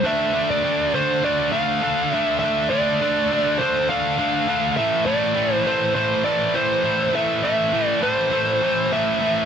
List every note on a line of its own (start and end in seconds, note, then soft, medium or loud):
0.04 0.33 D3 medium
0.04 0.34 A3 loud
0.04 0.34 D4 loud
0.04 0.50 E5 medium
0.33 0.63 D3 medium
0.33 0.64 A3 medium
0.33 0.65 D4 loud
0.51 0.91 D5 medium
0.64 0.94 D3 medium
0.64 0.95 A3 loud
0.64 0.95 D4 loud
0.94 1.22 D3 medium
0.94 1.24 A3 medium
0.94 1.23 D4 loud
0.94 1.24 C5 medium
1.23 1.52 D3 loud
1.23 1.53 A3 loud
1.23 1.53 D4 loud
1.23 1.52 D5 medium
1.52 1.81 D3 medium
1.52 1.83 A3 loud
1.52 1.82 D4 loud
1.52 2.14 F5 medium
1.82 2.13 D3 loud
1.82 2.14 A3 loud
1.82 2.14 D4 loud
2.14 2.42 D3 medium
2.14 2.43 A3 loud
2.14 2.44 D4 loud
2.14 2.39 E5 medium
2.39 2.70 D3 medium
2.39 2.69 E5 medium
2.44 2.72 A3 loud
2.44 2.71 D4 loud
2.70 3.00 D3 medium
2.70 3.02 A3 medium
2.70 3.01 D4 medium
2.70 3.61 D5 loud
3.01 3.31 D3 loud
3.01 3.32 A3 loud
3.01 3.32 D4 loud
3.32 3.59 D3 medium
3.32 3.60 A3 medium
3.32 3.60 D4 loud
3.58 3.88 D3 loud
3.58 3.90 A3 loud
3.58 3.89 D4 loud
3.58 3.89 C5 medium
3.89 4.18 D3 medium
3.89 4.19 A3 medium
3.89 4.18 D4 medium
3.89 4.76 F5 loud
4.19 4.47 D3 loud
4.19 4.49 A3 loud
4.19 4.48 D4 loud
4.49 4.76 D3 medium
4.49 4.79 A3 loud
4.49 4.76 D4 loud
4.77 5.06 A2 loud
4.77 5.07 E3 loud
4.77 5.07 A3 loud
4.77 5.05 E5 loud
5.06 5.35 A2 loud
5.06 5.35 E3 medium
5.06 5.36 A3 loud
5.06 5.54 D5 medium
5.35 5.65 A2 loud
5.35 5.66 E3 loud
5.35 5.65 A3 loud
5.54 5.67 C5 medium
5.65 5.94 A2 medium
5.65 5.94 E3 medium
5.65 5.96 A3 loud
5.65 5.94 C5 medium
5.95 6.23 A2 loud
5.95 6.24 E3 loud
5.95 6.25 A3 loud
5.95 6.23 C5 loud
6.24 6.53 A2 loud
6.24 6.54 E3 loud
6.24 6.55 A3 loud
6.24 6.55 D5 medium
6.54 6.83 A2 medium
6.54 6.83 E3 loud
6.54 6.85 A3 loud
6.54 7.16 C5 medium
6.84 7.12 A2 medium
6.84 7.12 E3 loud
6.84 7.14 A3 loud
7.13 7.43 A2 loud
7.13 7.43 E3 medium
7.13 7.44 A3 loud
7.13 7.43 E5 loud
7.44 7.72 A2 medium
7.44 7.72 E3 medium
7.44 7.73 A3 medium
7.44 7.87 E5 loud
7.73 8.00 A2 medium
7.73 8.01 E3 loud
7.73 8.02 A3 loud
7.87 7.99 D5 loud
8.01 8.30 A2 medium
8.01 8.31 E3 medium
8.01 8.32 A3 loud
8.01 8.95 C5 loud
8.31 8.61 A2 loud
8.31 8.61 E3 loud
8.31 8.62 A3 loud
8.62 8.90 A2 medium
8.62 8.91 E3 medium
8.62 8.92 A3 medium
8.92 9.20 A2 medium
8.92 9.20 E3 loud
8.92 9.21 A3 loud
8.92 9.45 E5 loud
9.21 9.45 A2 medium
9.21 9.45 E3 medium
9.21 9.45 A3 medium